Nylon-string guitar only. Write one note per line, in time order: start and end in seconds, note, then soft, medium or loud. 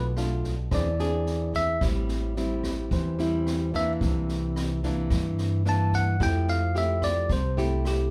0.00 0.69 B2 medium
0.00 0.12 A3 medium
0.00 0.13 D4 medium
0.00 0.13 F4 medium
0.17 0.54 A3 medium
0.17 0.54 D4 soft
0.17 0.54 F4 medium
0.72 1.79 E3 medium
0.72 0.88 C4 medium
0.72 0.88 D4 medium
0.72 0.88 G#4 medium
1.00 1.78 C4 medium
1.00 1.78 D4 medium
1.00 1.78 G#4 medium
1.82 2.89 A2 medium
1.82 2.33 G3 medium
1.82 2.33 C4 medium
1.82 2.33 E4 medium
2.37 3.15 G3 medium
2.37 3.15 C4 medium
2.37 3.15 E4 medium
2.91 3.73 E3 medium
3.19 3.69 G3 medium
3.19 3.70 C4 medium
3.19 3.70 E4 medium
3.74 4.79 E3 medium
3.74 4.80 A#3 medium
3.74 4.80 D4 medium
4.02 5.08 C3 medium
4.84 5.62 E3 medium
4.84 5.62 A#3 medium
4.84 5.62 D4 medium
5.11 6.18 G2 soft
5.66 6.16 E3 medium
5.66 6.16 A#3 soft
5.66 6.17 D4 medium
6.20 7.27 F3 medium
6.20 6.71 A3 medium
6.20 6.71 E4 medium
6.20 6.71 G4 medium
6.75 7.29 A3 medium
6.75 7.30 E4 medium
6.75 7.30 G4 medium
7.29 8.11 C3 medium
7.57 8.08 A3 medium
7.57 8.08 E4 medium
7.57 8.08 G4 medium